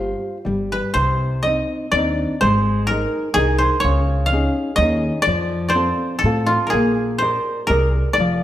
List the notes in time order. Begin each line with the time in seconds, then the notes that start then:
Already playing: G1 F4 G4 C5
0.45 G1 G3
0.72 B4
0.94 C2 C3 C5
1.43 C4 D#5
1.47 D#4
1.92 D#2 D5
1.96 C4 D4 D#4
2.41 G#1 G#3 C5
2.87 D#4 G#4 A#4
2.91 A#4
3.34 C2 D#4 G#4
3.38 A#4
3.58 C5
3.80 C#3 C#5
3.84 C#2
4.26 F5
4.32 C#4 D#4 G#4
4.76 D#2 C#4 D#5
4.80 D#4 G#4
5.22 D5
5.27 F2 F3
5.69 C5 D5
5.75 C4 F4 A4
6.19 A4
6.24 A2 C4 F4 A4
6.46 F4
6.67 G#4 A#4
6.73 A#1 A#3
7.18 G#4 A#4 C5 D5
7.67 C2 G#4 A#4 D5
8.13 D5
8.18 F1 F3